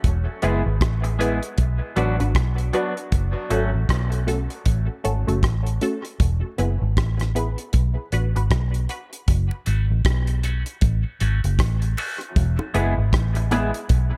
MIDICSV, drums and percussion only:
0, 0, Header, 1, 2, 480
1, 0, Start_track
1, 0, Key_signature, 3, "minor"
1, 0, Tempo, 769231
1, 27, Time_signature, 4, 2, 24, 8
1, 8843, End_track
2, 0, Start_track
2, 0, Title_t, "Drums"
2, 25, Note_on_c, 9, 42, 87
2, 26, Note_on_c, 9, 36, 95
2, 87, Note_off_c, 9, 42, 0
2, 88, Note_off_c, 9, 36, 0
2, 263, Note_on_c, 9, 42, 61
2, 326, Note_off_c, 9, 42, 0
2, 506, Note_on_c, 9, 36, 98
2, 506, Note_on_c, 9, 42, 76
2, 512, Note_on_c, 9, 37, 109
2, 568, Note_off_c, 9, 36, 0
2, 568, Note_off_c, 9, 42, 0
2, 575, Note_off_c, 9, 37, 0
2, 649, Note_on_c, 9, 42, 48
2, 712, Note_off_c, 9, 42, 0
2, 753, Note_on_c, 9, 42, 73
2, 815, Note_off_c, 9, 42, 0
2, 890, Note_on_c, 9, 42, 55
2, 952, Note_off_c, 9, 42, 0
2, 984, Note_on_c, 9, 42, 89
2, 988, Note_on_c, 9, 36, 99
2, 1046, Note_off_c, 9, 42, 0
2, 1051, Note_off_c, 9, 36, 0
2, 1226, Note_on_c, 9, 42, 71
2, 1289, Note_off_c, 9, 42, 0
2, 1374, Note_on_c, 9, 42, 47
2, 1436, Note_off_c, 9, 42, 0
2, 1466, Note_on_c, 9, 36, 106
2, 1466, Note_on_c, 9, 42, 79
2, 1472, Note_on_c, 9, 37, 108
2, 1528, Note_off_c, 9, 36, 0
2, 1529, Note_off_c, 9, 42, 0
2, 1535, Note_off_c, 9, 37, 0
2, 1612, Note_on_c, 9, 42, 47
2, 1674, Note_off_c, 9, 42, 0
2, 1706, Note_on_c, 9, 42, 71
2, 1769, Note_off_c, 9, 42, 0
2, 1854, Note_on_c, 9, 42, 52
2, 1916, Note_off_c, 9, 42, 0
2, 1947, Note_on_c, 9, 42, 86
2, 1949, Note_on_c, 9, 36, 101
2, 2010, Note_off_c, 9, 42, 0
2, 2011, Note_off_c, 9, 36, 0
2, 2187, Note_on_c, 9, 42, 66
2, 2250, Note_off_c, 9, 42, 0
2, 2428, Note_on_c, 9, 36, 92
2, 2429, Note_on_c, 9, 42, 78
2, 2436, Note_on_c, 9, 37, 110
2, 2490, Note_off_c, 9, 36, 0
2, 2492, Note_off_c, 9, 42, 0
2, 2498, Note_off_c, 9, 37, 0
2, 2570, Note_on_c, 9, 42, 50
2, 2633, Note_off_c, 9, 42, 0
2, 2670, Note_on_c, 9, 42, 72
2, 2732, Note_off_c, 9, 42, 0
2, 2810, Note_on_c, 9, 42, 54
2, 2872, Note_off_c, 9, 42, 0
2, 2905, Note_on_c, 9, 42, 98
2, 2908, Note_on_c, 9, 36, 98
2, 2967, Note_off_c, 9, 42, 0
2, 2971, Note_off_c, 9, 36, 0
2, 3149, Note_on_c, 9, 42, 68
2, 3211, Note_off_c, 9, 42, 0
2, 3298, Note_on_c, 9, 42, 51
2, 3360, Note_off_c, 9, 42, 0
2, 3387, Note_on_c, 9, 36, 101
2, 3389, Note_on_c, 9, 42, 79
2, 3395, Note_on_c, 9, 37, 109
2, 3450, Note_off_c, 9, 36, 0
2, 3451, Note_off_c, 9, 42, 0
2, 3457, Note_off_c, 9, 37, 0
2, 3535, Note_on_c, 9, 42, 47
2, 3597, Note_off_c, 9, 42, 0
2, 3628, Note_on_c, 9, 42, 76
2, 3690, Note_off_c, 9, 42, 0
2, 3773, Note_on_c, 9, 42, 51
2, 3836, Note_off_c, 9, 42, 0
2, 3867, Note_on_c, 9, 42, 84
2, 3869, Note_on_c, 9, 36, 100
2, 3930, Note_off_c, 9, 42, 0
2, 3931, Note_off_c, 9, 36, 0
2, 4108, Note_on_c, 9, 42, 61
2, 4171, Note_off_c, 9, 42, 0
2, 4349, Note_on_c, 9, 36, 96
2, 4349, Note_on_c, 9, 42, 75
2, 4355, Note_on_c, 9, 37, 111
2, 4411, Note_off_c, 9, 36, 0
2, 4411, Note_off_c, 9, 42, 0
2, 4418, Note_off_c, 9, 37, 0
2, 4490, Note_on_c, 9, 42, 50
2, 4500, Note_on_c, 9, 37, 65
2, 4553, Note_off_c, 9, 42, 0
2, 4562, Note_off_c, 9, 37, 0
2, 4592, Note_on_c, 9, 42, 68
2, 4654, Note_off_c, 9, 42, 0
2, 4730, Note_on_c, 9, 42, 54
2, 4793, Note_off_c, 9, 42, 0
2, 4823, Note_on_c, 9, 42, 92
2, 4829, Note_on_c, 9, 36, 99
2, 4885, Note_off_c, 9, 42, 0
2, 4892, Note_off_c, 9, 36, 0
2, 5068, Note_on_c, 9, 42, 73
2, 5130, Note_off_c, 9, 42, 0
2, 5218, Note_on_c, 9, 42, 47
2, 5280, Note_off_c, 9, 42, 0
2, 5308, Note_on_c, 9, 36, 94
2, 5308, Note_on_c, 9, 42, 81
2, 5313, Note_on_c, 9, 37, 115
2, 5370, Note_off_c, 9, 36, 0
2, 5370, Note_off_c, 9, 42, 0
2, 5376, Note_off_c, 9, 37, 0
2, 5455, Note_on_c, 9, 42, 46
2, 5517, Note_off_c, 9, 42, 0
2, 5548, Note_on_c, 9, 42, 70
2, 5611, Note_off_c, 9, 42, 0
2, 5695, Note_on_c, 9, 42, 49
2, 5758, Note_off_c, 9, 42, 0
2, 5789, Note_on_c, 9, 42, 89
2, 5791, Note_on_c, 9, 36, 109
2, 5852, Note_off_c, 9, 42, 0
2, 5853, Note_off_c, 9, 36, 0
2, 5935, Note_on_c, 9, 60, 62
2, 5997, Note_off_c, 9, 60, 0
2, 6029, Note_on_c, 9, 42, 69
2, 6091, Note_off_c, 9, 42, 0
2, 6270, Note_on_c, 9, 36, 102
2, 6270, Note_on_c, 9, 42, 86
2, 6276, Note_on_c, 9, 37, 118
2, 6332, Note_off_c, 9, 42, 0
2, 6333, Note_off_c, 9, 36, 0
2, 6339, Note_off_c, 9, 37, 0
2, 6410, Note_on_c, 9, 42, 52
2, 6473, Note_off_c, 9, 42, 0
2, 6511, Note_on_c, 9, 42, 73
2, 6516, Note_on_c, 9, 61, 69
2, 6574, Note_off_c, 9, 42, 0
2, 6579, Note_off_c, 9, 61, 0
2, 6652, Note_on_c, 9, 42, 58
2, 6714, Note_off_c, 9, 42, 0
2, 6747, Note_on_c, 9, 42, 94
2, 6752, Note_on_c, 9, 36, 111
2, 6810, Note_off_c, 9, 42, 0
2, 6814, Note_off_c, 9, 36, 0
2, 6992, Note_on_c, 9, 42, 78
2, 6997, Note_on_c, 9, 60, 46
2, 7054, Note_off_c, 9, 42, 0
2, 7060, Note_off_c, 9, 60, 0
2, 7139, Note_on_c, 9, 42, 55
2, 7202, Note_off_c, 9, 42, 0
2, 7231, Note_on_c, 9, 36, 106
2, 7232, Note_on_c, 9, 42, 81
2, 7238, Note_on_c, 9, 37, 119
2, 7293, Note_off_c, 9, 36, 0
2, 7294, Note_off_c, 9, 42, 0
2, 7300, Note_off_c, 9, 37, 0
2, 7375, Note_on_c, 9, 42, 51
2, 7437, Note_off_c, 9, 42, 0
2, 7471, Note_on_c, 9, 46, 81
2, 7477, Note_on_c, 9, 60, 80
2, 7477, Note_on_c, 9, 61, 81
2, 7534, Note_off_c, 9, 46, 0
2, 7539, Note_off_c, 9, 60, 0
2, 7539, Note_off_c, 9, 61, 0
2, 7619, Note_on_c, 9, 42, 51
2, 7682, Note_off_c, 9, 42, 0
2, 7714, Note_on_c, 9, 36, 116
2, 7714, Note_on_c, 9, 42, 94
2, 7776, Note_off_c, 9, 36, 0
2, 7777, Note_off_c, 9, 42, 0
2, 7856, Note_on_c, 9, 60, 64
2, 7918, Note_off_c, 9, 60, 0
2, 7953, Note_on_c, 9, 42, 68
2, 8015, Note_off_c, 9, 42, 0
2, 8192, Note_on_c, 9, 36, 105
2, 8192, Note_on_c, 9, 42, 80
2, 8199, Note_on_c, 9, 37, 115
2, 8254, Note_off_c, 9, 36, 0
2, 8255, Note_off_c, 9, 42, 0
2, 8261, Note_off_c, 9, 37, 0
2, 8331, Note_on_c, 9, 42, 53
2, 8394, Note_off_c, 9, 42, 0
2, 8432, Note_on_c, 9, 42, 73
2, 8436, Note_on_c, 9, 61, 69
2, 8495, Note_off_c, 9, 42, 0
2, 8499, Note_off_c, 9, 61, 0
2, 8576, Note_on_c, 9, 42, 58
2, 8638, Note_off_c, 9, 42, 0
2, 8669, Note_on_c, 9, 42, 99
2, 8673, Note_on_c, 9, 36, 114
2, 8732, Note_off_c, 9, 42, 0
2, 8736, Note_off_c, 9, 36, 0
2, 8843, End_track
0, 0, End_of_file